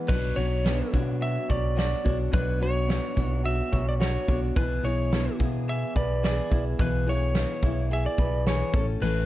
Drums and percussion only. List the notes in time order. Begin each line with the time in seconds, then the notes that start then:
0.09 kick, crash, tambourine
0.23 tambourine
0.37 open hi-hat, tambourine
0.53 tambourine
0.65 snare, open hi-hat, tambourine
0.94 kick, open hi-hat, tambourine
1.09 tambourine
1.22 open hi-hat
1.37 tambourine
1.50 kick, open hi-hat, tambourine
1.65 tambourine
1.78 snare, open hi-hat, tambourine
1.93 snare
2.06 kick, open hi-hat
2.33 kick, open hi-hat, tambourine
2.48 tambourine
2.62 open hi-hat, tambourine
2.77 tambourine
2.89 snare, open hi-hat, tambourine
3.05 tambourine
3.17 kick, open hi-hat, tambourine
3.32 tambourine
3.45 open hi-hat
3.59 tambourine
3.73 kick, open hi-hat, tambourine
3.87 tambourine
4.00 snare, open hi-hat, tambourine
4.15 snare
4.28 kick, open hi-hat, tambourine
4.43 tambourine
4.56 kick, open hi-hat, tambourine
4.70 tambourine
4.84 open hi-hat, tambourine
4.98 tambourine
5.12 snare, open hi-hat, tambourine
5.39 kick, open hi-hat, tambourine
5.54 tambourine
5.68 open hi-hat
5.82 tambourine
5.96 kick, open hi-hat, tambourine
6.10 tambourine
6.24 snare, open hi-hat, tambourine
6.52 kick, open hi-hat
6.79 kick, open hi-hat, tambourine
6.93 tambourine
7.07 open hi-hat, tambourine
7.34 snare, open hi-hat, tambourine
7.63 kick, open hi-hat, tambourine
7.78 tambourine
7.91 open hi-hat, tambourine
8.06 tambourine
8.18 kick, open hi-hat, tambourine
8.46 snare, open hi-hat, tambourine
8.62 tambourine
8.73 kick, open hi-hat, tambourine
8.88 tambourine
9.01 tambourine, crash
9.17 tambourine